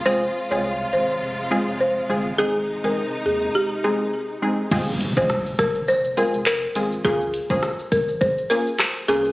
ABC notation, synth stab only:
X:1
M:4/4
L:1/16
Q:"Swing 16ths" 1/4=103
K:Fm
V:1 name="Synth stab"
[A,CFA] z2 [A,CFA] z6 [A,CFA] z3 [A,CFA] z | [A,CEA] z2 [A,CEA] z6 [A,CEA] z3 [A,CEA] z | [A,CFA] z2 [A,CFA] z6 [A,CFA] z3 [A,CFA] z | [B,DFA] z2 [B,DFA] z6 [B,DFA] z3 [B,DFA] z |]